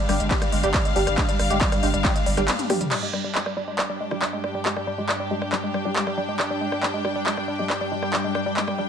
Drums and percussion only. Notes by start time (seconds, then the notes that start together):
0.09 cross-stick, open hi-hat
0.20 closed hi-hat
0.31 kick, clap, closed hi-hat, ride
0.42 cross-stick, closed hi-hat
0.52 open hi-hat
0.63 closed hi-hat
0.74 kick, cross-stick, clap, closed hi-hat, ride
0.85 closed hi-hat
0.96 open hi-hat
1.07 cross-stick, closed hi-hat
1.18 kick, clap, closed hi-hat, ride
1.29 closed hi-hat
1.39 cross-stick, open hi-hat
1.50 closed hi-hat
1.61 kick, clap, closed hi-hat, ride
1.72 cross-stick, closed hi-hat
1.83 open hi-hat
1.94 closed hi-hat
2.05 kick, cross-stick, clap, closed hi-hat, ride
2.16 closed hi-hat
2.26 open hi-hat
2.37 cross-stick, closed hi-hat
2.48 clap, closed hi-hat, high tom, ride
2.59 closed hi-hat, high tom
2.70 cross-stick, open hi-hat, mid tom
2.81 closed hi-hat, mid tom
2.91 clap, crash
3.13 cross-stick
3.35 clap
3.46 cross-stick
3.79 cross-stick, clap
4.11 cross-stick
4.22 clap
4.44 cross-stick
4.65 clap
4.76 cross-stick
5.09 cross-stick, clap
5.42 cross-stick
5.52 clap
5.74 cross-stick
5.96 clap
6.07 cross-stick
6.39 cross-stick, clap
6.72 cross-stick
6.83 clap
7.05 cross-stick
7.26 clap
7.37 cross-stick
7.70 cross-stick, clap
8.02 cross-stick
8.13 clap
8.35 cross-stick
8.57 clap
8.68 cross-stick